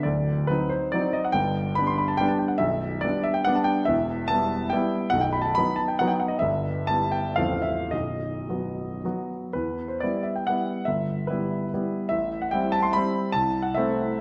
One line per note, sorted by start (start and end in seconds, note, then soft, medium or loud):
0.03 0.49 D1 soft
0.03 0.49 D2 medium
0.03 0.49 D5 medium
0.47 0.91 F#3 soft
0.47 0.91 C4 soft
0.47 0.91 D#4 soft
0.47 0.72 B4 medium
0.70 0.93 C5 medium
0.92 1.32 F#3 soft
0.92 1.32 C4 soft
0.92 1.32 D#4 medium
0.92 1.14 D5 medium
1.13 1.25 D#5 medium
1.24 1.35 F#5 medium
1.32 1.76 G1 medium
1.32 1.76 G2 soft
1.32 1.77 G5 medium
1.75 2.17 G3 soft
1.75 2.17 B3 soft
1.75 2.17 D4 soft
1.75 1.88 B5 medium
1.87 1.99 C6 medium
1.98 2.10 B5 medium
2.08 2.20 A5 medium
2.17 2.57 G3 medium
2.17 2.57 B3 medium
2.17 2.57 D4 medium
2.17 2.29 G5 medium
2.28 2.40 A5 medium
2.39 2.50 G5 medium
2.48 2.60 F#5 medium
2.58 3.01 B0 soft
2.58 3.01 B1 medium
2.58 3.02 E5 medium
3.01 3.43 G3 soft
3.01 3.43 B3 soft
3.01 3.43 D4 medium
3.01 3.25 D5 medium
3.24 3.35 E5 medium
3.34 3.46 G5 medium
3.45 3.82 G3 medium
3.45 3.82 B3 medium
3.45 3.83 D4 medium
3.45 3.56 F#5 loud
3.55 3.66 A5 medium
3.64 3.85 G5 medium
3.85 4.28 E1 medium
3.85 4.27 E2 medium
3.85 4.28 E5 medium
4.28 4.68 G3 soft
4.28 4.68 B3 soft
4.28 4.69 E4 soft
4.28 4.71 A5 loud
4.70 5.09 G3 medium
4.70 5.09 B3 medium
4.70 5.12 G5 medium
4.74 5.10 E4 medium
5.10 5.55 B0 medium
5.10 5.55 B1 medium
5.10 5.22 F#5 loud
5.21 5.33 G5 medium
5.33 5.44 B5 medium
5.42 5.55 A5 medium
5.55 5.96 F#3 soft
5.55 5.97 B3 soft
5.55 5.97 D#4 soft
5.55 5.78 B5 medium
5.76 5.88 A5 medium
5.88 5.99 G5 medium
5.99 6.40 F#3 medium
5.99 6.40 B3 medium
5.99 6.40 D#4 medium
5.99 6.10 F#5 medium
6.08 6.20 G5 medium
6.20 6.31 F#5 medium
6.28 6.41 D#5 medium
6.39 6.87 G1 medium
6.39 6.86 G2 medium
6.39 6.87 E5 medium
6.87 7.35 G3 soft
6.87 7.35 B3 soft
6.87 7.35 E4 soft
6.87 7.12 A5 loud
7.11 7.37 G5 medium
7.36 7.90 A0 soft
7.36 7.91 A1 medium
7.36 7.88 F3 soft
7.36 7.88 C4 soft
7.36 7.89 A4 soft
7.36 7.64 F5 medium
7.62 7.91 E5 medium
7.91 8.47 B0 soft
7.91 8.47 B1 soft
7.91 9.30 D#5 medium
8.49 9.00 F#3 soft
8.49 9.00 B3 soft
8.49 9.00 F#4 soft
9.05 9.52 F#3 soft
9.05 9.52 B3 soft
9.05 9.52 F#4 soft
9.53 10.00 E2 soft
9.53 9.89 B4 medium
9.88 10.01 C5 soft
10.00 10.43 G3 soft
10.00 10.43 B3 soft
10.00 10.44 E4 soft
10.00 10.24 D5 medium
10.23 10.35 E5 medium
10.36 10.46 G5 medium
10.47 10.84 G3 soft
10.47 10.84 B3 soft
10.47 10.84 E4 soft
10.47 10.86 F#5 medium
10.85 11.27 G1 soft
10.85 11.27 E5 medium
11.27 11.68 G3 soft
11.27 11.68 B3 soft
11.27 11.68 E4 medium
11.27 12.10 B4 medium
11.74 12.08 G3 soft
11.74 12.08 B3 soft
11.74 12.08 E4 soft
12.09 12.51 A1 medium
12.09 12.40 E5 medium
12.42 12.52 F#5 medium
12.51 12.90 G3 medium
12.51 12.91 C4 soft
12.51 12.91 E4 medium
12.51 12.73 G5 medium
12.72 12.83 A5 medium
12.83 12.93 C6 medium
12.93 13.31 G3 soft
12.93 13.31 C4 medium
12.93 13.31 E4 soft
12.93 13.33 B5 medium
13.32 13.74 C2 medium
13.32 13.63 A5 medium
13.62 13.74 F#5 medium
13.75 14.14 A3 medium
13.75 14.14 C4 medium
13.75 14.15 E4 medium
13.75 14.21 E5 medium